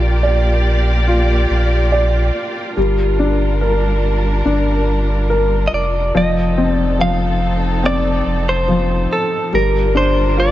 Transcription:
Already playing: A#1 A#3 F4 G4 D5
0.23 D5
1.08 F4
1.50 A#1
1.92 D5
2.77 G1 G3 D4 A#4
3.19 D4
3.61 A#4
4.45 G1 D4
5.30 A#4
5.67 D#5
5.72 F1 D5
6.14 F1 F3 C4 D#4 A4 D#5
6.57 C4
6.71 D5
6.99 F3 F5
7.83 C4 D5
8.26 F1
8.49 C5
8.68 F3
9.13 A4
9.52 G1 G3 D4 F4 A#4
9.95 D4 C5
10.37 F4 D5

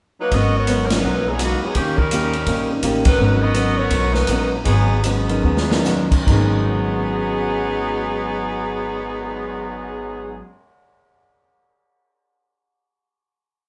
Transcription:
0.20 F#3 A#3 D#4 B4
0.31 G#1 G#2 F#3 B3 C#4 F#4 A#4 D#5, kick, ride
0.56 B3 F#4 A#4 C#5
0.67 G#2 F#3 B3 C#4, hi-hat pedal, ride
0.85 A#4
0.90 F#3 B3 C#4 D#4 A#4 B4, snare, ride
0.94 A#4
1.03 B1 G#2 F#3 B3 C#4
1.29 F#3 B3 D#4 G#4
1.39 G#2 F#3 B3 C#4, cross-stick, hi-hat pedal, ride
1.43 D#3 A#3 F#4
1.63 F#3 B3 D#4 G#4, muted upright bass stroke
1.75 D#2 D#3 A#3 C#4 G4, kick, ride
1.97 G3 C#4 D#4 A#4, kick
2.11 D#3 A#3 C#4 G4, hi-hat pedal, ride
2.33 ride
2.46 A#1 D#3 A#3 C#4 G4, kick, ride
2.70 G3 A#3 C#4 D#4 A#4
2.83 A1 D#3 A#3 C#4 G4, cross-stick, hi-hat pedal, ride
3.05 F#3 D#4 A#4 B4, kick, ride
3.18 G#1 G#2 F#3 B3 C#4 D#4 A#4
3.41 B3 F#4 A#4 D#5
3.54 G#2 F#3 B3 C#4, hi-hat pedal, ride
3.77 B3 F#4 A#4 C#5
3.90 B1 G#2 F#3 B3 C#4, kick, ride
4.12 F#3 D#4 A#4 B4, snare
4.27 A#1 G#2 F#3 B3 C#4, cross-stick, hi-hat pedal, ride
4.64 G#1 G#2 F#3 B3 D#4 G#4, kick, ride
4.68 C#4
5.02 G#2 F#3 B3 C#4 D#4 G#4, hi-hat pedal, ride
5.28 F#3 B3 C#4 D#4 A#4, ride
5.43 D#2 G#2 F#3 B3 C#4
5.57 snare
5.70 F#3 B3 C#4 D#4 A#4, snare
5.84 G#2 F#3 B3 C#4, snare, hi-hat pedal
6.12 kick, crash
6.24 G#1 G#2 D#3 F#3, kick, crash
6.28 F#3 B3 C#4 D#4 G#4 A#4
6.33 C#4
6.55 cymbal swell
6.70 C#5
6.77 F#5
6.86 A#5
6.95 C#6
7.04 F#6
7.15 A#6
7.27 C#7

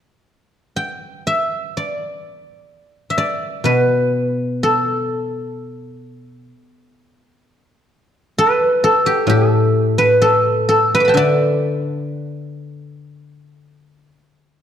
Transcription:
0.76 G5
1.27 E5
1.77 D5
3.10 E5
3.18 D5
3.64 B2 B4
4.63 A4
8.38 B4
8.84 A4
9.06 G4
9.27 A2 G4
9.49 A4
9.98 B4
10.22 A4
10.69 A4
10.95 B4
11.00 D6
11.05 A5 B5
11.09 G5
11.14 D3 D5 E5

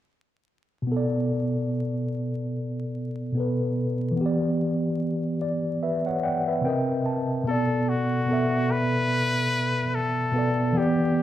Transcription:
0.82 B2
0.87 B3
0.92 A4
0.97 D5
3.32 B2 B3
3.37 A4 B4
4.11 E3
4.16 B3
4.21 G4
4.26 D5
5.42 D5
5.83 B4 E5
6.06 C#5 F#5
6.23 D5 F#5 G5
6.48 B4 E5
6.61 C3 C4 G5
6.66 A#4 D#5
7.06 A5
7.44 B2 B3
7.48 A4 D5
7.89 F#4
8.26 B2 B3
8.31 A4 E5
8.71 B4
9.95 A4
10.31 B2 B3
10.36 A4 D5
10.72 E3 B3
10.77 G4 D5

